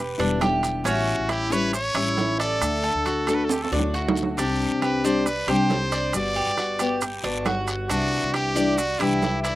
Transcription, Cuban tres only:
0.00 0.18 B4 medium
0.20 0.41 D4 medium
0.42 0.84 G4 medium
0.85 1.28 C#4 medium
1.29 1.51 E4 medium
1.52 1.94 C#5 medium
1.95 2.38 E4 medium
2.40 2.82 D5 medium
2.84 3.05 A4 medium
3.06 3.27 F#4 medium
3.28 3.71 A4 medium
3.73 3.93 D4 medium
3.94 4.36 F#4 medium
4.39 4.81 D4 medium
4.82 5.03 G4 medium
5.04 5.47 D5 medium
5.48 5.90 G4 medium
5.92 6.35 D5 medium
6.36 6.57 G4 medium
6.58 6.79 F#4 medium
6.80 7.23 G4 medium
7.24 7.45 D4 medium
7.46 7.89 F#4 medium
7.90 8.32 D4 medium
8.34 8.55 G4 medium
8.56 8.99 D5 medium
9.00 9.43 G4 medium
9.45 9.55 D5 medium

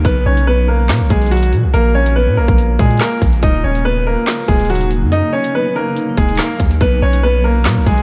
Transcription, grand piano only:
0.05 0.24 B3 medium
0.05 0.24 B4 medium
0.26 0.45 C#4 medium
0.26 0.45 C#5 medium
0.47 0.66 B3 medium
0.47 0.66 B4 medium
0.68 1.08 A#3 medium
0.68 1.08 A#4 medium
1.10 1.30 G#3 medium
1.10 1.29 G#4 medium
1.31 1.51 F#3 medium
1.31 1.50 F#4 medium
1.73 1.93 A#3 medium
1.73 1.92 A#4 loud
1.95 2.14 C#4 medium
1.95 2.14 C#5 medium
2.16 2.35 B3 medium
2.16 2.35 B4 medium
2.37 2.77 A#3 medium
2.37 2.77 A#4 medium
2.79 2.99 G#3 medium
2.79 2.98 G#4 medium
3.01 3.20 A#3 medium
3.01 3.19 A#4 medium
3.43 3.62 D#4 medium
3.43 3.62 D#5 medium
3.64 3.83 C#4 medium
3.64 3.83 C#5 medium
3.85 4.04 B3 medium
3.85 4.04 B4 medium
4.07 4.46 A#3 medium
4.07 4.46 A#4 medium
4.48 4.68 G#3 medium
4.48 4.67 G#4 medium
4.70 4.89 F#3 medium
4.70 4.88 F#4 medium
5.12 5.31 D#4 medium
5.12 5.31 D#5 medium
5.33 5.52 C#4 medium
5.33 5.52 C#5 medium
5.55 5.74 B3 medium
5.55 5.73 B4 medium
5.76 6.16 A#3 medium
5.76 6.15 A#4 medium
6.18 6.37 G#3 medium
6.18 6.36 G#4 medium
6.39 6.58 A#3 medium
6.39 6.58 A#4 medium
6.82 7.01 B3 medium
6.82 7.00 B4 medium
7.02 7.21 C#4 medium
7.02 7.21 C#5 medium
7.23 7.42 B3 medium
7.23 7.42 B4 medium
7.44 7.84 A#3 medium
7.44 7.84 A#4 medium
7.86 8.02 G#3 medium
7.86 8.02 G#4 medium

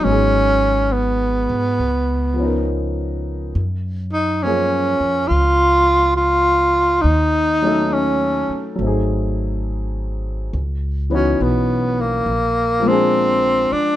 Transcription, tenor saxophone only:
0.04 0.94 C#4 medium
0.92 2.67 B3 medium
4.13 4.44 D#4 medium
4.43 5.29 C#4 medium
5.28 6.16 F4 medium
6.16 7.03 F4 medium
7.01 7.94 D#4 medium
7.93 8.80 C#4 medium
11.13 11.44 C#4 medium
11.42 12.03 B3 medium
12.01 12.89 A#3 medium
12.88 13.74 C4 medium
13.72 13.96 D4 medium

